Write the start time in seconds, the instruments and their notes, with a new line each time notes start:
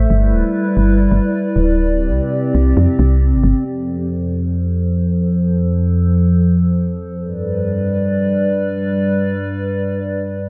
0.10 fm bass G1, ambient pad G3 E4 B4 D5
0.32 fm bass D1
0.77 fm bass G1
1.12 fm bass G1
1.56 fm bass D1
1.88 ambient pad C3 C4 G4
2.10 fm bass C2
2.55 fm bass C2
2.77 fm bass F2
2.99 fm bass C2
3.34 fm bass G1
3.44 fm bass G1
3.66 ambient pad F2 F3 A4 C5
7.21 ambient pad G2 G3 B4 D5